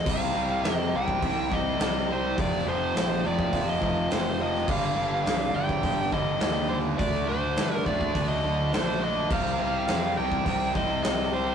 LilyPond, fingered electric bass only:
\new Staff \with { instrumentName = "Fingered electric bass" } { \clef bass \time 4/4 \key c \dorian \tempo 4 = 104 c,8 c,8 f,8 c,8 c,8 c,8 c,4 | f,,8 f,,8 bes,,8 f,,8 f,,8 f,,8 f,,4 | g,,8 g,,8 c,8 g,,8 g,,8 g,,8 ees,4 | d,8 d,8 g,8 d,8 d,8 d,8 bes,,4 |
c,8 c,8 f,8 c,8 c,8 c,8 c,4 | }